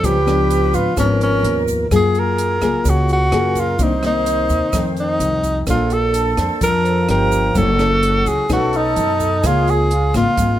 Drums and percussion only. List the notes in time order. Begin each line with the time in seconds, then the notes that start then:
0.04 kick, closed hi-hat, shaker
0.27 cross-stick, closed hi-hat, shaker
0.50 closed hi-hat, shaker
0.74 kick, closed hi-hat, shaker
0.97 kick, cross-stick, closed hi-hat, shaker
1.21 closed hi-hat, shaker
1.44 closed hi-hat
1.68 kick, closed hi-hat, shaker
1.91 kick, cross-stick, closed hi-hat, shaker
2.14 closed hi-hat, shaker
2.38 closed hi-hat, shaker
2.61 kick, cross-stick, closed hi-hat, shaker
2.85 kick, closed hi-hat, shaker
3.08 closed hi-hat, shaker
3.32 cross-stick, closed hi-hat
3.55 kick, closed hi-hat, shaker
3.79 kick, closed hi-hat, shaker
4.03 cross-stick, closed hi-hat, shaker
4.26 closed hi-hat, shaker
4.49 kick, closed hi-hat, shaker
4.73 kick, cross-stick, closed hi-hat, shaker
4.97 closed hi-hat, shaker
5.20 closed hi-hat, shaker
5.44 kick, closed hi-hat, shaker
5.67 kick, cross-stick, closed hi-hat, shaker
5.90 closed hi-hat, shaker
6.14 closed hi-hat, shaker
6.37 kick, cross-stick, closed hi-hat, shaker
6.61 kick, closed hi-hat, shaker
6.85 closed hi-hat, shaker
7.09 cross-stick, closed hi-hat
7.32 kick, closed hi-hat, shaker
7.55 kick, closed hi-hat, shaker
7.79 cross-stick, closed hi-hat, shaker
8.03 closed hi-hat
8.26 kick, closed hi-hat, shaker
8.49 kick, cross-stick, closed hi-hat, shaker
8.73 closed hi-hat, shaker
8.96 closed hi-hat, shaker
9.20 kick, closed hi-hat, shaker
9.43 kick, cross-stick, closed hi-hat, shaker
9.67 closed hi-hat, shaker
9.91 closed hi-hat
10.14 kick, cross-stick, closed hi-hat, shaker
10.37 kick, closed hi-hat, shaker